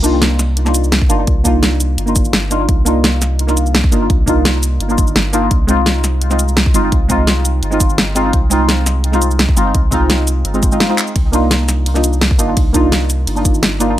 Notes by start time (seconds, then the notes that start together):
Already playing: C2
0.02 A#3 D4 D#4 F4, closed hi-hat, cabasa
0.22 snare, closed hi-hat
0.39 snare, closed hi-hat, cabasa
0.57 closed hi-hat
0.65 A#3 D4 D#4 F4, snare, cabasa
0.74 closed hi-hat, cabasa
0.84 cabasa
0.92 snare, closed hi-hat
1.02 kick
1.09 G1 A#3 D4 D#4 F4, closed hi-hat, cabasa
1.19 A#3 D4 D#4 F4
1.27 C2, kick, closed hi-hat
1.44 A#3 D4 D#4 F4, kick, closed hi-hat, cabasa
1.63 snare, closed hi-hat
1.80 closed hi-hat, cabasa
1.98 G1, closed hi-hat
2.06 A#3 D4 D#4 F4, cabasa
2.16 kick, closed hi-hat, cabasa
2.25 cabasa
2.33 snare, closed hi-hat
2.50 A#3 D4 D#4 F4, closed hi-hat, cabasa
2.59 A#3 D4 D#4 F4
2.69 C2, kick, closed hi-hat
2.85 A#3 D4 D#4 F4, closed hi-hat, cabasa
3.04 snare, closed hi-hat
3.22 snare, closed hi-hat, cabasa
3.39 closed hi-hat
3.47 A#3 D4 D#4 F4, snare, cabasa
3.57 closed hi-hat, cabasa
3.66 cabasa
3.75 snare, closed hi-hat
3.84 kick
3.91 G1 A#3 D4 D#4 F4, closed hi-hat, cabasa
4.01 A#3 D4 D#4 F4
4.10 C2, kick, closed hi-hat
4.26 A#3 D4 D#4 F4, kick, closed hi-hat, cabasa
4.45 snare, closed hi-hat
4.63 closed hi-hat, cabasa
4.80 G1, closed hi-hat
4.88 A#3 D4 D#4 F4, cabasa
4.98 kick, closed hi-hat, cabasa
5.07 cabasa
5.15 G1, snare, closed hi-hat
5.33 A#3 D4 D#4 F4, closed hi-hat, cabasa
5.42 A#3 D4 D#4 F4
5.51 C2, kick, closed hi-hat
5.67 G#3 C4 D#4 F4, closed hi-hat, cabasa
5.86 snare, closed hi-hat
6.04 snare, closed hi-hat, cabasa
6.22 closed hi-hat
6.29 G#3 C4 D#4 F4, snare, cabasa
6.39 closed hi-hat, cabasa
6.48 cabasa
6.57 snare, closed hi-hat
6.66 kick
6.74 G1 G#3 C4 D#4 F4, closed hi-hat, cabasa
6.83 G#3 C4 D#4 F4
6.92 C2, kick, closed hi-hat
7.08 G#3 C4 D#4 F4, kick, closed hi-hat, cabasa
7.27 snare, closed hi-hat
7.45 closed hi-hat, cabasa
7.63 G1, closed hi-hat
7.70 G#3 C4 D#4 F4, cabasa
7.80 kick, closed hi-hat, cabasa
7.90 cabasa
7.98 snare, closed hi-hat
8.15 G#3 C4 D#4 F4, closed hi-hat, cabasa
8.24 G#3 C4 D#4 F4
8.33 C2, kick, closed hi-hat
8.50 G#3 C4 D#4 F4, closed hi-hat, cabasa
8.69 snare, closed hi-hat
8.86 snare, closed hi-hat, cabasa
9.04 closed hi-hat
9.12 G#3 C4 D#4 F4, snare, cabasa
9.22 closed hi-hat, cabasa
9.31 cabasa
9.39 snare, closed hi-hat
9.49 kick
9.56 G1 G#3 C4 D#4 F4, closed hi-hat, cabasa
9.65 G#3 C4 D#4 F4
9.75 C2, kick, closed hi-hat
9.91 G#3 C4 D#4 F4, kick, closed hi-hat, cabasa
10.10 snare, closed hi-hat
10.27 closed hi-hat, cabasa
10.45 G1, closed hi-hat
10.54 G#3 C4 D#4 F4, cabasa
10.63 kick, closed hi-hat, cabasa
10.72 G#3 C4 D#4 F4, cabasa
10.80 snare, closed hi-hat
10.89 G#3 C4 D#4 F4
10.98 clap, closed hi-hat, cabasa
11.07 cabasa
11.16 C2, kick, closed hi-hat, ride
11.32 A#3 D4 D#4 F4, closed hi-hat, ride, cabasa
11.51 snare, closed hi-hat, ride
11.69 snare, closed hi-hat, ride, cabasa
11.86 closed hi-hat, ride
11.94 A#3 D4 D#4 F4, snare, cabasa
12.04 closed hi-hat, ride, cabasa
12.13 cabasa
12.21 snare, closed hi-hat, ride
12.31 kick
12.38 G1 A#3 D4 D#4 F4, closed hi-hat, ride, cabasa
12.48 A#3 D4 D#4 F4
12.57 C2, kick, closed hi-hat, ride
12.73 A#3 D4 D#4 F4, kick, closed hi-hat, ride, cabasa
12.92 snare, closed hi-hat, ride
13.10 closed hi-hat, ride, cabasa
13.27 G1, closed hi-hat, ride
13.35 A#3 D4 D#4 F4, cabasa
13.45 kick, closed hi-hat, ride, cabasa
13.54 cabasa
13.63 snare, closed hi-hat, ride
13.80 A#3 D4 D#4 F4, closed hi-hat, ride, cabasa
13.89 A#3 D4 D#4 F4